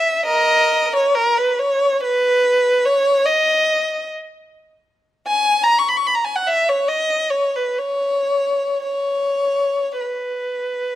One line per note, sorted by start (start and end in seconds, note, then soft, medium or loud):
0.00 0.26 E5 medium
0.25 0.88 A#4 medium
0.25 0.91 D#5 medium
0.96 1.17 C#5 medium
1.15 1.37 A#4 medium
1.38 1.59 B4 medium
1.59 2.01 C#5 medium
2.04 2.83 B4 medium
2.85 3.26 C#5 medium
3.26 4.06 D#5 medium
5.28 5.62 G#5 medium
5.64 5.79 A#5 medium
5.79 5.91 C#6 medium
5.89 5.99 B5 medium
5.97 6.07 C#6 medium
6.07 6.15 B5 medium
6.15 6.25 A#5 medium
6.24 6.35 G#5 medium
6.36 6.47 F#5 medium
6.47 6.68 E5 medium
6.69 6.89 C#5 medium
6.88 7.32 D#5 medium
7.30 7.54 C#5 medium
7.56 7.80 B4 medium
7.79 8.83 C#5 medium
8.84 9.97 C#5 medium
10.01 10.95 B4 soft